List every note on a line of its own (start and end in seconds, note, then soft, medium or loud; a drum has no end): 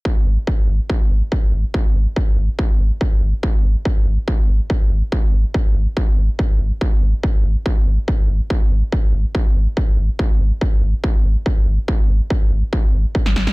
0.05 kick loud
0.16 0.26 G#1 medium
0.26 0.37 G#1 loud
0.47 kick loud
0.58 0.68 G#1 medium
0.68 0.79 G#1 loud
0.90 kick loud
1.00 1.10 G#1 medium
1.11 1.21 G#1 loud
1.32 kick loud
1.43 1.52 G#1 medium
1.53 1.64 G#1 medium
1.74 kick loud
1.85 1.95 G#1 medium
1.95 2.06 G#1 loud
2.16 kick loud
2.27 2.37 G#1 medium
2.38 2.48 G#1 loud
2.59 kick loud
2.70 2.79 G#1 medium
2.80 2.90 G#1 loud
3.01 kick loud
3.12 3.21 G#1 medium
3.22 3.33 G#1 medium
3.43 kick loud
3.54 3.64 G#1 medium
3.64 3.75 G#1 loud
3.85 kick loud
3.96 4.06 G#1 medium
4.06 4.17 G#1 loud
4.28 kick loud
4.38 4.48 G#1 medium
4.49 4.59 G#1 loud
4.70 kick loud
4.81 4.90 G#1 medium
4.91 5.02 G#1 loud
5.12 kick loud
5.23 5.33 G#1 medium
5.33 5.44 G#1 loud
5.54 kick loud
5.65 5.75 G#1 medium
5.75 5.86 G#1 loud
5.97 kick loud
6.08 6.17 G#1 medium
6.18 6.28 G#1 loud
6.39 kick loud
6.50 6.60 G#1 medium
6.60 6.71 G#1 loud
6.81 kick loud
6.92 7.02 G#1 medium
7.02 7.13 G#1 loud
7.23 kick loud
7.34 7.44 G#1 medium
7.45 7.55 G#1 loud
7.66 kick loud
7.77 7.86 G#1 medium
7.87 7.98 G#1 loud
8.08 kick loud
8.19 8.28 G#1 medium
8.29 8.40 G#1 loud
8.50 kick loud
8.61 8.71 G#1 medium
8.71 8.82 G#1 loud
8.92 kick loud
9.03 9.13 G#1 medium
9.14 9.24 G#1 loud
9.35 kick loud
9.46 9.55 G#1 medium
9.56 9.67 G#1 loud
9.77 kick loud
9.88 9.97 G#1 medium
9.98 10.09 G#1 medium
10.19 kick loud
10.30 10.40 G#1 medium
10.40 10.51 G#1 loud
10.61 kick loud
10.72 10.82 G#1 medium
10.82 10.93 G#1 loud
11.04 kick loud
11.15 11.24 G#1 medium
11.25 11.35 G#1 loud
11.46 kick loud
11.57 11.66 G#1 medium
11.67 11.78 G#1 medium
11.88 kick loud
11.99 12.09 G#1 medium
12.09 12.20 G#1 loud
12.30 kick loud
12.41 12.51 G#1 medium
12.52 12.62 G#1 loud
12.73 kick loud
12.84 12.93 G#1 medium
12.94 13.05 G#1 loud
13.15 kick loud
13.26 13.36 G#1 medium
13.26 snare soft
13.36 13.47 G#1 loud
13.36 snare medium
13.47 snare medium